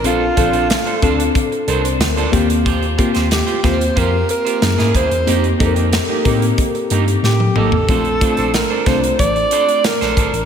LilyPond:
<<
  \new Staff \with { instrumentName = "Alto saxophone" } { \time 4/4 \key bes \major \tempo 4 = 92 f'2 r2 | r4 g'8 c''8 bes'8 bes'4 c''8~ | c''8 r2 r8 g'8 a'8~ | a'4 bes'8 c''8 d''4 bes'4 | }
  \new Staff \with { instrumentName = "Clean electric guitar" } { \time 4/4 \key bes \major <d' a' c''>16 r16 <d' a' c''>16 <d' a' c''>16 r16 <d' a' c''>16 <d' a' c''>16 r8. <d' a' c''>16 r8 <d' a' c''>16 <f' g' c''>16 r16 | <f' g' c''>16 r16 <f' g' c''>16 <f' g' c''>16 r16 <f' g' c''>16 <f' g' c''>16 r16 <f' g' c''>16 r8 <f' g' c''>16 r16 <bes fes' aes'>16 <bes fes' aes'>16 r16 | <bes ees' g'>16 r16 <bes ees' g'>16 <bes ees' g'>16 r16 <bes ees' g'>16 <bes ees' g'>16 r8. <bes ees' g'>16 r8. <bes ees' g'>16 r16 | <d' a' c''>16 r16 <d' a' c''>16 <d' a' c''>16 r16 <d' a' c''>16 <d' a' c''>16 r8. <d' a' c''>16 r8 <d' a' c''>16 <d' a' c''>16 r16 | }
  \new Staff \with { instrumentName = "FM electric piano" } { \time 4/4 \key bes \major << { r2 r8 <d' bes'>16 c''8 <f' d''>8 r16 | r1 | r1 | r1 | } \\ { <c' d' f' a'>8 <c' d' f' a'>4 <c' d' f' a'>4. r8 <bes c' f' g'>8~ | <bes c' f' g'>8 <bes c' f' g'>4 <bes c' f' g'>4. <bes des' fes' aes'>4 | <bes c' ees' g'>8 <bes c' ees' a' bes'>4 <c' ees' g' bes'>4. r4 | <a c' d' f'>8 <a c' d' f'>4 <a c' d' f'>4. r4 | } >> }
  \new Staff \with { instrumentName = "Tine electric piano" } { \clef bass \time 4/4 \key bes \major bes,,8 bes,,8. r16 d,8 r8 c,8 d,8 ees,8~ | ees,8. ees,8 r16 ees,8 f,8 r8 ges,16 aes,16 ees,16 fes,16 | f,8 f,8. r16 a,8 r8 g,8 a,8 a,,8 | bes,,8. bes,,8 r16 c,8 a,,8 r8. bes,,16 aes,,16 a,,16 | }
  \new DrumStaff \with { instrumentName = "Drums" } \drummode { \time 4/4 hh8 <hh bd>16 hh16 <hh sn>16 hh16 <hh bd>16 hh16 <hh bd>16 hh16 hh16 hh16 <hh sn>16 hh16 <hh bd>16 hh16 | <hh bd>16 hh16 <hh bd>16 <hh sn>16 <hh sn>16 hh16 <hh bd sn>16 hh16 <hh bd>8 hh16 hh16 <hh sn>16 sn16 <hh bd>16 hh16 | hh16 hh16 <hh bd>16 hh16 <hh sn>8 <hh bd>16 hh16 <hh bd>16 hh16 hh16 hh16 sn16 tommh16 toml16 tomfh16 | <hh bd>16 hh16 <hh bd>16 hh16 <hh sn>8 <hh bd sn>16 hh16 <hh bd>16 hh16 hh16 hh16 <hh sn>16 <hh sn>16 <hh bd>16 hh16 | }
>>